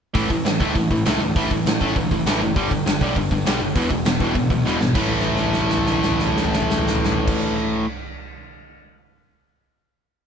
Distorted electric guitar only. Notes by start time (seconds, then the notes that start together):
0.14 A2 E3 A3
0.30 A2 E3
0.45 A2 E3
0.60 A2 E3 A3
0.76 A2 E3
0.91 A2 E3
1.05 A2 E3 A3
1.21 A2 E3
1.36 A2 E3 A3
1.51 A2 E3
1.66 A2 E3
1.81 A2 E3 A3
1.96 A2 E3
2.11 A2 E3
2.26 A2 E3 A3
2.41 A2 E3
2.56 G2 D3 G3
2.71 G2 D3
2.86 G2 D3
3.01 G2 D3 G3
3.17 G2 D3
3.32 G2 D3
3.46 G2 D3 G3
3.61 G2 D3
3.75 E2 B2 E3
3.90 E2 B2
4.06 E2 B2
4.21 E2 B2 E3
4.35 E2 B2
4.50 E2 B2
4.65 E2 B2 E3
4.80 E2 B2
4.94 A2 E3 A3